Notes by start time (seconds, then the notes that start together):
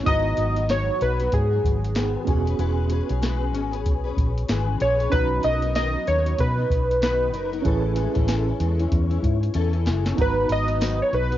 0.03 G#1 G#2 D#3 F#3 B3 D#4 F#4 D#5, kick, closed hi-hat
0.08 A#5
0.37 G#1 D#3 F#3 B3 F#4, closed hi-hat
0.56 F#3 B3 F#4, closed hi-hat
0.69 G#2 D#3 F#3 B3 F#4 C#5, snare, closed hi-hat
1.00 B1 D#3 F#3 B3 F#4 B4, closed hi-hat
1.19 F#3 B3 F#4, closed hi-hat
1.32 G#2 G#4, kick, closed hi-hat
1.51 F#3 B3 F#4
1.64 G#1, kick, closed hi-hat
1.84 closed hi-hat
1.94 G#2 D#3 F#3 B3 F#4, snare, closed hi-hat
2.25 E1 G#3 B3 C#4 F#4 G#4 B4, kick, closed hi-hat
2.30 G#4
2.46 C#4 G#4 B4, closed hi-hat
2.59 E1 E3 G#3 C#4 G#4 B4, closed hi-hat
2.90 G#3 C#4 G#4 B4, closed hi-hat
3.09 B1 C#4 G#4 B4, closed hi-hat
3.22 E3 G#3 C#4 G#4 B4, snare, closed hi-hat
3.53 G#1 G#3 C#4 G#4 B4, closed hi-hat
3.71 C#4 G#4 B4, closed hi-hat
3.86 B1, kick, closed hi-hat
4.04 C#4 G#4 B4
4.17 A#1, kick, closed hi-hat
4.38 closed hi-hat
4.48 G#1 E3 G#3 C#4 G#4 B4, snare, closed hi-hat
4.80 A#1 G#3 C#4 G#4 B4 C#5, closed hi-hat
4.99 C#4 G#4 B4, closed hi-hat
5.10 B1 B2 D#3 F#3 B3 C#4 D#4 F#4 B4, kick, closed hi-hat
5.15 A#5
5.42 B1 F#3 B3 D#4 A#4 D#5, closed hi-hat
5.62 F#3 B3 D#4 A#4, closed hi-hat
5.75 B2 D#3 F#3 B3 D#4 A#4 D#5, snare, closed hi-hat
5.94 F#3 B3 D#4 A#4
6.06 D#2 F#3 B3 D#4 A#4 C#5, closed hi-hat
6.26 closed hi-hat
6.39 B2 B4, kick, closed hi-hat
6.58 F#3 B3 D#4
6.70 B1, kick, closed hi-hat
6.91 closed hi-hat
7.01 B2 D#3 F#3 B3 D#4 B4, snare, closed hi-hat
7.33 F#1 F#3 B3 D#4 A#4, closed hi-hat
7.52 F#3 B3 D#4 A#4, closed hi-hat
7.62 A1 A2 E3 C#4 E4 G#4 A4, kick, closed hi-hat
7.67 B4
7.96 G#3 C#4 E4 A4, closed hi-hat
8.14 A1 G#3 C#4 E4 A4, kick, closed hi-hat
8.27 A2 E3 G#3 C#4 E4 A4, snare, closed hi-hat
8.46 G#3 C#4 E4 A4
8.60 E2 G#3 C#4 E4 A4, closed hi-hat
8.79 G#3 C#4 E4, closed hi-hat
8.92 E2, kick, closed hi-hat
9.10 G#3 C#4 E4, closed hi-hat
9.23 G#2, kick, closed hi-hat
9.43 closed hi-hat
9.54 E2 A2 E3 C#4 E4 A4, closed hi-hat
9.73 closed hi-hat
9.85 F#1 G#3 C#4 E4 A4, snare, closed hi-hat
10.04 G#3 C#4 E4 A4, snare, closed hi-hat
10.15 G#1 G#2 D#3 F#3 B3 D#4 F#4 B4, kick, closed hi-hat
10.20 B4 A#5
10.48 G#1 F#3 B3 D#4 B4, closed hi-hat
10.52 D#5
10.67 F#3 B3 D#4 B4, closed hi-hat
10.80 G#2 D#3 F#3 B3 D#4 B4, snare, closed hi-hat, tambourine
11.02 C#5
11.12 B1 F#3 B3 D#4 B4, closed hi-hat
11.30 F#3 B3 D#4 B4, closed hi-hat